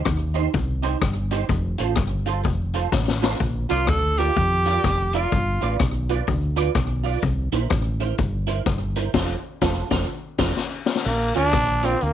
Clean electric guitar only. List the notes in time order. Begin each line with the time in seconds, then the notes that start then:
0.34 D#4 G4 C5
0.53 muted clean electric guitar stroke
0.82 D#4 G4 C5
1.31 D#4 G4 C5
1.78 F4 A4 C5
2.26 F4 A4 C5
2.74 F4 A4 C5
3.22 F4 A4 C5
3.69 F4 A#4 D5
4.18 F4 A#4 D5
4.66 F4 A#4 D5
5.14 F4 A#4 D5
5.61 F4 B4 D5
6.09 F4 B4 D5
6.28 muted clean electric guitar stroke
6.56 F4 B4 D5
7.04 F4 B4 D5
7.52 E4 A#4 C5
8.00 E4 A#4 C5
8.18 muted clean electric guitar stroke
8.47 E4 A#4 C5
8.96 E4 A#4 C5
9.14 F4 A4 C5
9.62 F4 A4 C5
9.91 F4 A4 C5
10.39 F4 A4 C5
11.35 F4 A#4 D5
11.83 F4 A#4 D5
12.01 muted clean electric guitar stroke